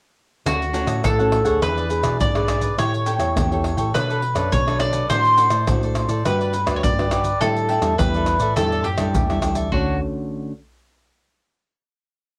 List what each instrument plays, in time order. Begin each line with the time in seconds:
0.46 tine electric piano D2, nylon-string guitar D3 A3 C#4 F#4, cavaquinho D4 A4 C#5 F#5, mandolin F#4, pandeiro, tamborim, maracas, surdo
0.62 muted cavaquinho stroke, pandeiro, maracas
0.73 nylon-string guitar A3 C#4 F#4, cavaquinho D4 A4 C#5 F#5, pandeiro, maracas
0.87 tine electric piano A2, cavaquinho A4 C#5 F#5, pandeiro, tamborim, maracas
1.04 nylon-string guitar A2, tine electric piano A2, cavaquinho D4 A4 C#5 F#5, mandolin A4, pandeiro, tamborim, maracas, surdo
1.19 nylon-string guitar A3 C#4 F#4, cavaquinho A4 C#5 F#5, pandeiro, maracas
1.32 pandeiro, tamborim
1.44 tine electric piano D2, nylon-string guitar B3 D4 G#4, cavaquinho A4 C#5 F#5, pandeiro, maracas, surdo
1.62 tine electric piano E2, nylon-string guitar E3, cavaquinho E4 G#4 B4 D5, mandolin B4, pandeiro, tamborim, maracas, surdo
1.77 cavaquinho G#4 B4 D5, pandeiro, maracas
1.90 nylon-string guitar B3 D4 G#4, muted cavaquinho stroke, pandeiro, maracas
2.03 tine electric piano B2, cavaquinho G#4 B4 D5, pandeiro, tamborim, maracas, surdo
2.20 tine electric piano G#2, mandolin D5, pandeiro, maracas, surdo
2.35 nylon-string guitar B3 D4 G#4, cavaquinho G#4 B4 D5, pandeiro, tamborim, maracas, surdo
2.48 cavaquinho E4 G#4 B4 D5, pandeiro, tamborim, maracas, surdo
2.61 cavaquinho G#4 B4 D5, pandeiro, maracas, surdo
2.78 tine electric piano A2, nylon-string guitar A3 E4 G4 C#5, cavaquinho G4 A4 C#5 G5, mandolin C#5, pandeiro, tamborim, maracas, surdo
2.94 muted cavaquinho stroke, pandeiro, maracas
3.06 cavaquinho G4 A4 C#5 G5, pandeiro, maracas
3.19 tine electric piano E2, nylon-string guitar E4 G4 C#5, cavaquinho A4 C#5 G5, pandeiro, tamborim, maracas
3.36 tine electric piano E2, nylon-string guitar E3, cavaquinho G4 A4 C#5 G5, pandeiro, tamborim, maracas, surdo
3.51 nylon-string guitar E4 G4 C#5, cavaquinho A4 C#5 G5, pandeiro, maracas
3.64 pandeiro, tamborim
3.77 tine electric piano A2, cavaquinho A4 C#5 G5, pandeiro, maracas, surdo
3.94 nylon-string guitar B3 D4 A4 C#5, cavaquinho D4 A4 B4 D5, mandolin B4, pandeiro, tamborim, maracas, surdo
4.09 cavaquinho A4 B4 D5, pandeiro, maracas
4.22 muted cavaquinho stroke, pandeiro
4.35 tine electric piano F#2, nylon-string guitar D4 A4 C#5, cavaquinho A4 B4 D5, pandeiro, tamborim, maracas, surdo
4.52 tine electric piano B2, nylon-string guitar F#3, mandolin C#5, pandeiro, maracas, surdo
4.67 nylon-string guitar D4 A4 C#5, cavaquinho A4 B4 D5, pandeiro, tamborim, maracas, surdo
4.79 cavaquinho D4 A4 B4 D5, mandolin D5, pandeiro, tamborim, maracas, surdo
4.93 cavaquinho A4 B4 D5, pandeiro, maracas, surdo
5.10 tine electric piano A2, nylon-string guitar A3 D4 F#4 C5, cavaquinho F#4 A4 C5 D5, mandolin C5, pandeiro, tamborim, maracas, surdo
5.25 muted cavaquinho stroke, pandeiro, maracas
5.37 cavaquinho F#4 A4 C5 D5, pandeiro, maracas
5.50 tine electric piano A2, cavaquinho A4 C5 D5, pandeiro, tamborim, maracas
5.67 tine electric piano A2, nylon-string guitar A3 D4 F#4 C5, cavaquinho F#4 A4 C5 D5, pandeiro, tamborim, maracas, surdo
5.83 cavaquinho A4 C5 D5, pandeiro, maracas
5.95 pandeiro, tamborim, maracas
6.08 tine electric piano A2, cavaquinho A4 C5 D5, pandeiro, maracas, surdo
6.25 tine electric piano G2, nylon-string guitar G3 D4 F#4 B4, cavaquinho F#4 G4 B4 D5, mandolin B4, pandeiro, tamborim, maracas, surdo
6.41 cavaquinho G4 B4 D5, pandeiro, maracas
6.53 muted cavaquinho stroke, pandeiro, maracas
6.66 tine electric piano D2, nylon-string guitar D4 F#4 B4, cavaquinho G4 B4 D5, pandeiro, tamborim, maracas, surdo
6.76 mandolin C#5
6.83 tine electric piano G2, nylon-string guitar D3, mandolin D5, pandeiro, maracas, surdo
6.98 nylon-string guitar D4 F#4 B4, cavaquinho G4 B4 D5, pandeiro, tamborim, maracas, surdo
7.11 nylon-string guitar D4 F#4 B4, cavaquinho F#4 G4 B4 D5, pandeiro, tamborim, maracas, surdo
7.24 cavaquinho G4 B4 D5, pandeiro, maracas, surdo
7.41 nylon-string guitar A2 G3 D4 E4, tine electric piano A2, cavaquinho G4 A4 D5 E5, mandolin A4, pandeiro, tamborim, maracas, surdo
7.57 muted cavaquinho stroke, pandeiro, maracas
7.69 cavaquinho G4 A4 D5 E5, pandeiro
7.81 tine electric piano E2, nylon-string guitar G3 D4 E4, cavaquinho A4 D5 E5, pandeiro, tamborim, maracas
7.98 tine electric piano E2, nylon-string guitar E3 G3 D4 E4, cavaquinho G4 A4 D5 E5, mandolin B4, pandeiro, tamborim, maracas, surdo
8.14 cavaquinho A4 D5 E5, pandeiro, maracas
8.26 pandeiro, tamborim, maracas
8.39 tine electric piano A2, cavaquinho A4 D5 E5, pandeiro, maracas, surdo
8.56 tine electric piano E2, nylon-string guitar A2 G3 D4 E4, cavaquinho G4 A4 D5 E5, mandolin A4, pandeiro, tamborim, maracas, surdo
8.72 cavaquinho A4 D5 E5, pandeiro, maracas
8.84 tine electric piano F#2, mandolin G4, muted cavaquinho stroke, pandeiro
8.97 nylon-string guitar G3 D4 E4, cavaquinho A4 D5 E5, pandeiro, tamborim, maracas, surdo
9.14 tine electric piano E2, nylon-string guitar E3, pandeiro, maracas, surdo
9.30 nylon-string guitar G3 D4 E4, cavaquinho A4 D5 E5, pandeiro, tamborim, maracas, surdo
9.42 tine electric piano D2, nylon-string guitar G3 D4 E4, cavaquinho G4 A4 D5 E5, pandeiro, tamborim, maracas, surdo
9.55 cavaquinho A4 D5 E5, pandeiro, maracas, surdo
9.72 tine electric piano D2, nylon-string guitar D3 A3 C#4 F#4, cavaquinho D4 A4 C#5 F#5, mandolin F#4, surdo